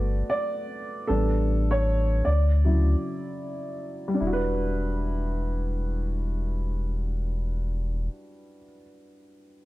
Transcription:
Already playing: G1 A3 B3 F#4 D5
0.30 D5
1.07 A1 G3 B3 D4 A4
1.71 C#5
2.25 D2 D5
2.64 C#3 F#3 E4
4.08 G3
4.14 D4
4.20 E1 E4
4.27 F#4
4.33 B4

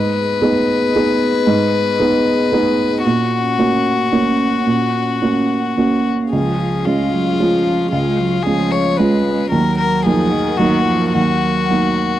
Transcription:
Already playing: G#2 B3 G#4 B4 D#5
0.41 B3 D#4 G#4
0.95 B3 D#4 G#4
1.47 G#2
2.00 B3 D#4 G#4
2.52 B3 D#4 G#4
3.04 A#2 C#4 F#4 F#5
3.58 A#3 C#4 F#4
4.12 A#3 C#4 F#4
4.67 A#2
5.22 A#3 C#4 F#4
5.77 A#3 C#4 F#4
6.31 C#2 F3 C#4 G#4 F5
6.85 G#3 C#4 F4
7.12 F#3
7.40 F3 G#3 C#4 F4
7.91 C#2 G#3 F4
8.19 F#3
8.43 F3 G#3 C#4 F4 G#4
8.71 C#5
8.97 G#3 C#4 F4 B4
9.26 G#3
9.50 D#2 F#3 A#3 A#4 F#5
9.78 A#4
10.04 F3 F#3 A#3 D#4 G#4
10.30 D#3
10.57 D#3 F#3 A#3 D#4 F#4
10.86 F3
11.13 D#2 F#3 F#4
11.70 F#3 A#3 D#4

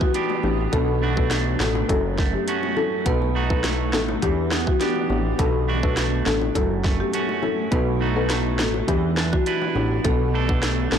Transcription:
Already playing: E3 B3 D4 E4 G4 F#5
0.01 F#4, kick
0.14 B3 D4 G4, closed hi-hat
0.30 high bongo
0.43 A1 B3 D4 E4 G4, low bongo
0.72 B1 B2 A3 B3 D4 F#4 A4, kick, closed hi-hat
1.02 A3 D4 F#4
1.17 B3 D4 F#4 A4 B4, kick
1.31 A3, cross-stick, snare, closed hi-hat
1.60 A1 B3 D4 F#4 A4, cross-stick, snare, low bongo
1.75 high bongo
1.89 F#1 F#2 F#3 A3 C#4 E4 F#4 A4, kick, closed hi-hat, high bongo
2.18 A3, kick, snare
2.34 G4
2.48 A3 C#4 F#4, closed hi-hat
2.63 high bongo
2.76 C#4 E4 F#4 A4, low bongo
3.05 B1 B2 B3 D#4 F#4 A4 B4, kick, closed hi-hat
3.22 high bongo
3.35 A3 D#4 F#4
3.50 B3 D#4 F#4 A4 B4, kick
3.64 A3, cross-stick, snare, closed hi-hat, high bongo
3.93 A1 B3 D#4 F#4 A4, cross-stick, snare, low bongo
4.08 high bongo
4.22 E2 E3 B3 D4 E4 G4 F#5, kick, closed hi-hat, high bongo
4.51 B3, cross-stick, snare
4.66 F#4, kick, high bongo
4.81 B3 D4 G4, snare, closed hi-hat
4.96 high bongo
5.09 A1 B3 D4 E4 G4, low bongo
5.38 B1 B2 A3 B3 D4 F#4 A4, kick, closed hi-hat
5.68 A3 D4 F#4
5.83 B3 D4 F#4 A4 B4, kick
5.97 A3, cross-stick, snare, closed hi-hat
6.26 A1 B3 D4 F#4 A4, cross-stick, snare, low bongo
6.41 high bongo
6.55 F#1 F#2 F#3 C#4 E4 F#4 A4, kick, closed hi-hat, high bongo
6.84 A3, kick, snare
7.00 G4
7.13 A3 C#4 F#4, closed hi-hat
7.29 high bongo
7.42 C#4 E4 F#4 A4, low bongo
7.71 B1 B2 B3 D#4 F#4 A4 B4, kick, closed hi-hat
8.01 A3 D#4 F#4
8.16 B3 D#4 F#4 A4 B4
8.30 A3, cross-stick, snare, closed hi-hat
8.59 A1 B3 D#4 F#4 A4, cross-stick, snare, low bongo
8.74 high bongo
8.88 E2 E3 B3 D4 E4 G4 F#5, kick, closed hi-hat, high bongo
9.17 D4, cross-stick, snare
9.33 F#4, kick
9.46 D4 E4 B4, closed hi-hat
9.62 high bongo
9.75 A1 B3 D4 E4 G4, low bongo
10.04 B1 B2 A3 B3 D4 F#4 A4, kick, closed hi-hat
10.34 A3 D4 A4
10.49 B3 D4 F#4 A4 B4, kick
10.63 A3, cross-stick, snare, closed hi-hat
10.92 A1 B3 D4 F#4 A4, cross-stick, snare, low bongo

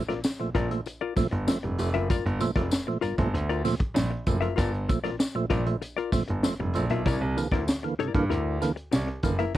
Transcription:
0.08 A#1 F3 A3 F4 A#4 D5, snare, closed hi-hat
0.24 muted hollow-body jazz guitar stroke, snare, tambourine
0.40 A#1 A#2 F3 A3, muted hollow-body jazz guitar stroke, closed hi-hat
0.55 A#1 G2 F4 A#4 D5, kick, snare, closed hi-hat
0.71 A#2 F3 A3, closed hi-hat
0.86 muted hollow-body jazz guitar stroke, closed hi-hat, tambourine
1.01 F4 A#4 D5
1.16 G1 A#2 F3 A3, muted hollow-body jazz guitar stroke, kick, snare, open hi-hat, tambourine
1.31 G1, muted hollow-body jazz guitar stroke, closed hi-hat
1.47 F3 A3, muted hollow-body jazz guitar stroke, snare, tambourine
1.63 F1 G2, muted hollow-body jazz guitar stroke, closed hi-hat
1.78 F1 F3 A3, closed hi-hat, tambourine
1.94 F#1 F4 A#4 E5, closed hi-hat
2.10 G2 F4 A#4 D5, kick, closed hi-hat, tambourine
2.26 G1, closed hi-hat
2.40 A#2 F3 A3, muted hollow-body jazz guitar stroke, closed hi-hat, tambourine
2.56 F1 F3 A3 F4 A#4 D5, kick, snare, closed hi-hat
2.71 muted hollow-body jazz guitar stroke, snare, tambourine
2.87 A#2 F3 A3, muted hollow-body jazz guitar stroke
3.01 G1 G2 F4 A#4 D5, closed hi-hat, tambourine
3.18 G1 A#2 F3 A3, muted hollow-body jazz guitar stroke, kick, closed hi-hat
3.34 D2, muted hollow-body jazz guitar stroke, closed hi-hat
3.49 F4 A#4 D5, closed hi-hat
3.65 A#2 F3 A3, muted hollow-body jazz guitar stroke, snare, open hi-hat, tambourine
3.80 muted hollow-body jazz guitar stroke, kick, closed hi-hat
3.94 A#1 G2, muted hollow-body jazz guitar stroke, snare, tambourine
4.11 muted hollow-body jazz guitar stroke
4.27 F#1 A#2 F3 A3, kick, closed hi-hat, tambourine
4.41 F3 A3 F4 A#4 E5, closed hi-hat
4.56 G1 G2 F4 A#4 D5, kick, closed hi-hat, tambourine
4.74 closed hi-hat
4.88 A#2 F3 A3, muted hollow-body jazz guitar stroke, kick, closed hi-hat, tambourine
5.04 A#1 F3 A3 F4 A#4 D5, snare, closed hi-hat
5.19 muted hollow-body jazz guitar stroke, snare, tambourine
5.35 A#1 A#2 F3 A3, muted hollow-body jazz guitar stroke
5.50 A#1 G2 F4 A#4 D5, kick, snare, closed hi-hat, tambourine
5.66 A#2 F3 A3, muted hollow-body jazz guitar stroke, closed hi-hat
5.82 muted hollow-body jazz guitar stroke, closed hi-hat, tambourine
5.97 F4 A#4 D5, closed hi-hat
6.12 G1 A#2 F3 A3, muted hollow-body jazz guitar stroke, kick, snare, open hi-hat, tambourine
6.28 G1, muted hollow-body jazz guitar stroke, closed hi-hat
6.43 F3 A3, muted hollow-body jazz guitar stroke, snare, tambourine
6.60 F1 G2, muted hollow-body jazz guitar stroke
6.74 A#1 F3 A3, closed hi-hat, tambourine
6.90 B1 F4 A#4 E5, closed hi-hat
7.05 C2 C3 E4 A#4 D5, kick, closed hi-hat, tambourine
7.21 C2
7.36 D3 E3 A#3, muted hollow-body jazz guitar stroke, closed hi-hat, tambourine
7.52 D2 E3 A#3 E4 A#4 D5, kick, snare, closed hi-hat
7.67 muted hollow-body jazz guitar stroke, snare, tambourine
7.83 D3 E3 A#3, muted hollow-body jazz guitar stroke, closed hi-hat
7.99 G2 C3 E4 A#4 D5, closed hi-hat
8.14 G2 D3 E3 A#3, muted hollow-body jazz guitar stroke, kick, closed hi-hat
8.30 D2 E4 A#4 D5, closed hi-hat
8.61 D3 E3 A#3, muted hollow-body jazz guitar stroke, snare, closed hi-hat, tambourine
8.76 muted hollow-body jazz guitar stroke, closed hi-hat
8.92 C2 C3, muted hollow-body jazz guitar stroke, snare, tambourine
9.07 muted hollow-body jazz guitar stroke, closed hi-hat
9.23 F#1 D3 E3 A#3, kick, closed hi-hat, tambourine
9.39 E3 A#3 E4 A#4 E5, closed hi-hat

